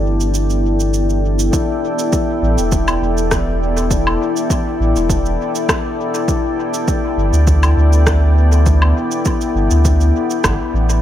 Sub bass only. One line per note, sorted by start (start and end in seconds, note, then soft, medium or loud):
0.00 1.50 G1 medium
2.42 2.56 A1 loud
2.58 2.99 E1 medium
3.02 4.18 E1 loud
4.80 4.94 A1 loud
4.96 5.36 E1 medium
7.17 7.31 G1 loud
7.33 7.74 D2 medium
7.77 8.93 D2 loud
9.55 9.69 G1 loud
9.71 10.12 D2 medium
10.44 10.58 G1 medium
10.74 11.02 A1 loud